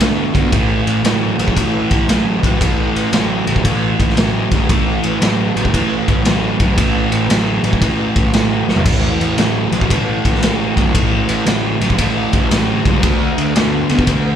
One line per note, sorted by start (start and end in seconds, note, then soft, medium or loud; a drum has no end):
0.00 0.28 D2 medium
0.00 0.31 D3 medium
0.00 0.32 B3 medium
0.00 snare loud
0.00 ride medium
0.34 0.49 D2 medium
0.34 0.51 D3 medium
0.34 0.51 B3 medium
0.34 kick medium
0.34 ride medium
0.52 0.80 A1 medium
0.52 1.01 A2 medium
0.52 1.01 E3 medium
0.52 kick loud
0.52 ride medium
0.87 1.01 A1 medium
0.87 ride medium
1.04 1.32 A1 medium
1.04 1.36 A2 medium
1.04 1.36 F#3 medium
1.04 snare loud
1.04 ride loud
1.38 1.53 A1 medium
1.38 1.55 A2 medium
1.38 1.55 F#3 medium
1.38 ride medium
1.48 kick medium
1.56 1.84 A1 medium
1.56 2.05 A2 medium
1.56 2.05 E3 medium
1.56 kick loud
1.56 ride loud
1.91 2.05 A1 medium
1.91 kick medium
1.91 ride medium
2.08 2.36 A1 medium
2.08 2.40 A2 medium
2.08 2.40 F#3 medium
2.08 snare loud
2.08 ride loud
2.43 2.57 A1 medium
2.43 2.59 A2 medium
2.43 2.59 F#3 medium
2.43 kick medium
2.43 ride medium
2.60 2.88 A1 loud
2.60 3.09 A2 medium
2.60 3.09 E3 loud
2.60 kick loud
2.60 ride loud
2.95 3.09 A1 medium
2.95 ride medium
3.13 3.40 A1 medium
3.13 3.44 A2 medium
3.13 3.44 F#3 loud
3.13 snare loud
3.13 ride loud
3.47 3.62 A1 medium
3.47 3.63 A2 medium
3.47 3.63 F#3 medium
3.47 ride medium
3.56 kick medium
3.64 3.92 A1 medium
3.64 4.13 A2 medium
3.64 4.14 E3 loud
3.64 kick medium
3.64 ride medium
4.00 4.14 A1 medium
4.00 kick medium
4.00 ride medium
4.10 snare soft
4.16 4.45 A1 loud
4.16 4.48 A2 medium
4.16 4.48 F#3 medium
4.16 snare loud
4.16 ride medium
4.51 4.66 A1 medium
4.51 4.68 A2 medium
4.51 4.68 F#3 medium
4.51 kick medium
4.51 ride medium
4.69 4.97 A1 loud
4.69 5.18 A2 medium
4.69 5.18 E3 loud
4.69 kick loud
4.69 ride loud
5.03 5.18 A1 medium
5.03 ride medium
5.21 5.49 A1 medium
5.21 5.52 A2 medium
5.21 5.53 F#3 medium
5.21 snare loud
5.21 ride loud
5.55 5.70 A1 loud
5.55 5.72 A2 medium
5.55 5.72 F#3 medium
5.55 ride medium
5.65 kick medium
5.73 6.01 A1 medium
5.73 6.22 A2 medium
5.73 6.22 E3 loud
5.73 kick loud
5.73 ride loud
6.08 6.22 A1 loud
6.08 kick medium
6.08 ride medium
6.25 6.53 A1 medium
6.25 6.56 A2 medium
6.25 6.56 F#3 medium
6.25 snare loud
6.25 ride medium
6.59 6.74 A1 medium
6.59 6.76 A2 medium
6.59 6.76 F#3 medium
6.59 kick medium
6.59 ride medium
6.77 7.05 A1 loud
6.77 7.26 A2 medium
6.77 7.26 E3 medium
6.77 kick loud
6.77 ride loud
7.12 7.26 A1 medium
7.12 ride medium
7.29 7.57 A1 medium
7.29 7.61 A2 medium
7.29 7.61 F#3 medium
7.29 snare loud
7.29 ride loud
7.64 7.78 A1 medium
7.64 7.80 A2 medium
7.64 7.80 F#3 medium
7.64 ride medium
7.73 kick medium
7.82 8.09 A1 medium
7.82 8.30 A2 medium
7.82 8.31 E3 medium
7.82 kick loud
7.82 ride medium
8.16 8.30 A1 medium
8.16 kick medium
8.16 ride medium
8.33 8.61 A1 medium
8.33 8.65 A2 medium
8.33 8.65 F#3 medium
8.33 snare loud
8.33 ride medium
8.68 8.83 A1 medium
8.68 8.84 A2 medium
8.68 8.85 F#3 medium
8.68 snare medium
8.76 floor tom medium
8.85 9.13 A1 medium
8.85 9.35 A2 medium
8.85 9.35 E3 loud
8.85 kick loud
8.85 crash loud
8.85 ride medium
9.21 9.35 A1 medium
9.21 ride medium
9.38 9.65 A1 medium
9.38 9.69 A2 medium
9.38 9.70 F#3 loud
9.38 snare loud
9.38 ride medium
9.72 9.86 A1 medium
9.72 9.88 A2 medium
9.72 9.89 F#3 medium
9.72 ride medium
9.81 kick medium
9.90 10.18 A1 loud
9.90 10.39 A2 medium
9.90 10.39 E3 loud
9.90 kick loud
9.90 ride loud
10.25 10.39 A1 medium
10.25 kick medium
10.25 ride medium
10.35 snare soft
10.42 10.70 A1 medium
10.42 10.73 A2 medium
10.42 10.74 F#3 medium
10.42 snare loud
10.42 ride loud
10.76 10.91 A1 medium
10.76 10.93 A2 medium
10.76 10.93 F#3 medium
10.76 kick medium
10.76 ride medium
10.94 11.22 A1 loud
10.94 11.43 A2 medium
10.94 11.43 E3 loud
10.94 kick loud
10.94 ride loud
11.29 11.43 A1 medium
11.29 ride medium
11.46 11.74 A1 medium
11.46 11.78 A2 medium
11.46 11.78 F#3 loud
11.46 snare loud
11.46 ride medium
11.81 11.95 A1 medium
11.81 11.97 A2 medium
11.81 11.97 F#3 medium
11.81 ride medium
11.90 kick medium
11.98 12.26 A1 medium
11.98 12.47 A2 medium
11.98 12.48 E3 loud
11.98 kick loud
11.98 ride loud
12.33 12.48 A1 medium
12.33 kick medium
12.33 ride medium
12.51 12.79 A1 loud
12.51 12.82 A2 medium
12.51 12.82 F#3 medium
12.51 snare loud
12.51 ride loud
12.85 13.00 C#2 medium
12.85 13.02 A2 medium
12.85 13.02 F#3 medium
12.85 kick medium
12.85 ride medium
13.03 13.31 D2 loud
13.03 13.53 D3 loud
13.03 13.53 A3 loud
13.03 kick loud
13.03 ride loud
13.38 13.52 D2 medium
13.38 ride medium
13.55 13.83 D2 medium
13.55 13.87 D3 medium
13.55 13.87 B3 medium
13.55 snare loud
13.55 ride medium
13.89 14.04 D2 medium
13.89 14.06 D3 medium
13.89 14.06 B3 medium
13.89 ride medium
13.99 kick medium
14.07 14.35 D2 medium
14.07 14.36 D3 medium
14.07 14.36 A3 medium
14.07 kick loud
14.07 ride medium